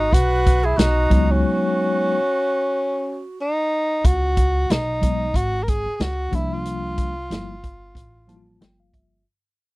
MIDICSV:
0, 0, Header, 1, 7, 480
1, 0, Start_track
1, 0, Tempo, 652174
1, 1056, Time_signature, 4, 2, 24, 8
1, 7178, End_track
2, 0, Start_track
2, 0, Title_t, "Flute"
2, 0, Program_c, 0, 73
2, 0, Note_on_c, 0, 66, 82
2, 87, Note_on_c, 0, 71, 85
2, 98, Note_off_c, 0, 66, 0
2, 469, Note_on_c, 0, 68, 73
2, 480, Note_off_c, 0, 71, 0
2, 566, Note_on_c, 0, 66, 79
2, 577, Note_off_c, 0, 68, 0
2, 944, Note_off_c, 0, 66, 0
2, 944, Note_on_c, 0, 66, 75
2, 2491, Note_off_c, 0, 66, 0
2, 7178, End_track
3, 0, Start_track
3, 0, Title_t, "Tenor saxophone"
3, 0, Program_c, 1, 66
3, 0, Note_on_c, 1, 63, 95
3, 100, Note_on_c, 1, 66, 101
3, 111, Note_off_c, 1, 63, 0
3, 483, Note_on_c, 1, 64, 83
3, 494, Note_off_c, 1, 66, 0
3, 584, Note_on_c, 1, 63, 93
3, 595, Note_off_c, 1, 64, 0
3, 965, Note_on_c, 1, 61, 87
3, 976, Note_off_c, 1, 63, 0
3, 2385, Note_off_c, 1, 61, 0
3, 2510, Note_on_c, 1, 63, 80
3, 2989, Note_on_c, 1, 66, 83
3, 3000, Note_off_c, 1, 63, 0
3, 3469, Note_on_c, 1, 63, 89
3, 3480, Note_off_c, 1, 66, 0
3, 3947, Note_on_c, 1, 66, 104
3, 3958, Note_off_c, 1, 63, 0
3, 4146, Note_on_c, 1, 70, 68
3, 4157, Note_off_c, 1, 66, 0
3, 4188, Note_on_c, 1, 68, 97
3, 4199, Note_off_c, 1, 70, 0
3, 4386, Note_off_c, 1, 68, 0
3, 4386, Note_on_c, 1, 68, 71
3, 4434, Note_on_c, 1, 66, 90
3, 4445, Note_off_c, 1, 68, 0
3, 4673, Note_on_c, 1, 64, 91
3, 4684, Note_off_c, 1, 66, 0
3, 4811, Note_on_c, 1, 65, 87
3, 4822, Note_off_c, 1, 64, 0
3, 6344, Note_off_c, 1, 65, 0
3, 7178, End_track
4, 0, Start_track
4, 0, Title_t, "Tine electric piano"
4, 0, Program_c, 2, 4
4, 811, Note_on_c, 2, 54, 83
4, 816, Note_on_c, 2, 56, 73
4, 824, Note_on_c, 2, 59, 74
4, 827, Note_on_c, 2, 63, 87
4, 1589, Note_off_c, 2, 54, 0
4, 1592, Note_off_c, 2, 56, 0
4, 1596, Note_off_c, 2, 59, 0
4, 1597, Note_off_c, 2, 63, 0
4, 3688, Note_on_c, 2, 54, 61
4, 3693, Note_on_c, 2, 56, 53
4, 3700, Note_on_c, 2, 59, 52
4, 3705, Note_on_c, 2, 63, 64
4, 3871, Note_off_c, 2, 54, 0
4, 3874, Note_off_c, 2, 56, 0
4, 3877, Note_off_c, 2, 59, 0
4, 3880, Note_off_c, 2, 63, 0
4, 4647, Note_on_c, 2, 53, 74
4, 4654, Note_on_c, 2, 55, 67
4, 4659, Note_on_c, 2, 58, 70
4, 4664, Note_on_c, 2, 62, 83
4, 5243, Note_off_c, 2, 53, 0
4, 5246, Note_off_c, 2, 55, 0
4, 5248, Note_off_c, 2, 58, 0
4, 5251, Note_off_c, 2, 62, 0
4, 5370, Note_on_c, 2, 53, 69
4, 5377, Note_on_c, 2, 55, 64
4, 5381, Note_on_c, 2, 58, 63
4, 5388, Note_on_c, 2, 64, 71
4, 5552, Note_off_c, 2, 53, 0
4, 5556, Note_off_c, 2, 55, 0
4, 5558, Note_off_c, 2, 58, 0
4, 5561, Note_off_c, 2, 64, 0
4, 6091, Note_on_c, 2, 53, 75
4, 6099, Note_on_c, 2, 55, 60
4, 6100, Note_on_c, 2, 81, 62
4, 6102, Note_on_c, 2, 58, 63
4, 6109, Note_on_c, 2, 64, 56
4, 6156, Note_on_c, 2, 65, 72
4, 6158, Note_off_c, 2, 64, 0
4, 6321, Note_off_c, 2, 81, 0
4, 6337, Note_on_c, 2, 79, 61
4, 6466, Note_off_c, 2, 79, 0
4, 6476, Note_on_c, 2, 77, 64
4, 6570, Note_off_c, 2, 77, 0
4, 6579, Note_on_c, 2, 76, 61
4, 6773, Note_off_c, 2, 53, 0
4, 6777, Note_off_c, 2, 55, 0
4, 6779, Note_off_c, 2, 58, 0
4, 6801, Note_off_c, 2, 76, 0
4, 6806, Note_off_c, 2, 65, 0
4, 7178, End_track
5, 0, Start_track
5, 0, Title_t, "Upright bass"
5, 0, Program_c, 3, 32
5, 93, Note_on_c, 3, 35, 84
5, 550, Note_off_c, 3, 35, 0
5, 574, Note_on_c, 3, 35, 92
5, 803, Note_off_c, 3, 35, 0
5, 817, Note_on_c, 3, 37, 91
5, 1045, Note_off_c, 3, 37, 0
5, 2976, Note_on_c, 3, 37, 88
5, 3432, Note_off_c, 3, 37, 0
5, 3460, Note_on_c, 3, 35, 80
5, 3914, Note_off_c, 3, 35, 0
5, 3930, Note_on_c, 3, 32, 86
5, 4293, Note_off_c, 3, 32, 0
5, 4415, Note_on_c, 3, 37, 93
5, 4644, Note_off_c, 3, 37, 0
5, 4656, Note_on_c, 3, 36, 82
5, 5347, Note_off_c, 3, 36, 0
5, 5377, Note_on_c, 3, 31, 70
5, 5832, Note_off_c, 3, 31, 0
5, 5850, Note_on_c, 3, 33, 81
5, 6309, Note_off_c, 3, 33, 0
5, 6339, Note_on_c, 3, 31, 77
5, 6794, Note_off_c, 3, 31, 0
5, 7178, End_track
6, 0, Start_track
6, 0, Title_t, "Muted upright bass strokes"
6, 4313, Note_on_c, 9, 29, 47
6, 4386, Note_off_c, 9, 29, 0
6, 7178, End_track
7, 0, Start_track
7, 0, Title_t, "Drums"
7, 93, Note_on_c, 9, 36, 77
7, 104, Note_on_c, 9, 42, 82
7, 166, Note_off_c, 9, 36, 0
7, 177, Note_off_c, 9, 42, 0
7, 342, Note_on_c, 9, 42, 78
7, 343, Note_on_c, 9, 36, 94
7, 415, Note_off_c, 9, 42, 0
7, 417, Note_off_c, 9, 36, 0
7, 581, Note_on_c, 9, 42, 93
7, 584, Note_on_c, 9, 38, 115
7, 655, Note_off_c, 9, 42, 0
7, 657, Note_off_c, 9, 38, 0
7, 818, Note_on_c, 9, 36, 88
7, 818, Note_on_c, 9, 42, 69
7, 891, Note_off_c, 9, 36, 0
7, 892, Note_off_c, 9, 42, 0
7, 2978, Note_on_c, 9, 36, 97
7, 2980, Note_on_c, 9, 42, 80
7, 3052, Note_off_c, 9, 36, 0
7, 3053, Note_off_c, 9, 42, 0
7, 3216, Note_on_c, 9, 42, 68
7, 3217, Note_on_c, 9, 36, 84
7, 3290, Note_off_c, 9, 42, 0
7, 3291, Note_off_c, 9, 36, 0
7, 3460, Note_on_c, 9, 42, 100
7, 3469, Note_on_c, 9, 38, 115
7, 3534, Note_off_c, 9, 42, 0
7, 3543, Note_off_c, 9, 38, 0
7, 3700, Note_on_c, 9, 36, 78
7, 3700, Note_on_c, 9, 42, 67
7, 3773, Note_off_c, 9, 42, 0
7, 3774, Note_off_c, 9, 36, 0
7, 3931, Note_on_c, 9, 36, 77
7, 3940, Note_on_c, 9, 42, 73
7, 4005, Note_off_c, 9, 36, 0
7, 4013, Note_off_c, 9, 42, 0
7, 4179, Note_on_c, 9, 42, 75
7, 4182, Note_on_c, 9, 36, 82
7, 4253, Note_off_c, 9, 42, 0
7, 4256, Note_off_c, 9, 36, 0
7, 4418, Note_on_c, 9, 42, 82
7, 4421, Note_on_c, 9, 38, 121
7, 4492, Note_off_c, 9, 42, 0
7, 4494, Note_off_c, 9, 38, 0
7, 4656, Note_on_c, 9, 36, 92
7, 4656, Note_on_c, 9, 42, 60
7, 4729, Note_off_c, 9, 42, 0
7, 4730, Note_off_c, 9, 36, 0
7, 4898, Note_on_c, 9, 42, 83
7, 4972, Note_off_c, 9, 42, 0
7, 5135, Note_on_c, 9, 42, 67
7, 5136, Note_on_c, 9, 36, 78
7, 5208, Note_off_c, 9, 42, 0
7, 5210, Note_off_c, 9, 36, 0
7, 5380, Note_on_c, 9, 42, 96
7, 5389, Note_on_c, 9, 38, 102
7, 5453, Note_off_c, 9, 42, 0
7, 5463, Note_off_c, 9, 38, 0
7, 5620, Note_on_c, 9, 36, 81
7, 5620, Note_on_c, 9, 42, 64
7, 5694, Note_off_c, 9, 36, 0
7, 5694, Note_off_c, 9, 42, 0
7, 5852, Note_on_c, 9, 36, 69
7, 5862, Note_on_c, 9, 42, 68
7, 5925, Note_off_c, 9, 36, 0
7, 5935, Note_off_c, 9, 42, 0
7, 6100, Note_on_c, 9, 42, 67
7, 6174, Note_off_c, 9, 42, 0
7, 6341, Note_on_c, 9, 42, 78
7, 6343, Note_on_c, 9, 38, 109
7, 6414, Note_off_c, 9, 42, 0
7, 6417, Note_off_c, 9, 38, 0
7, 6577, Note_on_c, 9, 36, 78
7, 6579, Note_on_c, 9, 42, 57
7, 6650, Note_off_c, 9, 36, 0
7, 6652, Note_off_c, 9, 42, 0
7, 7178, End_track
0, 0, End_of_file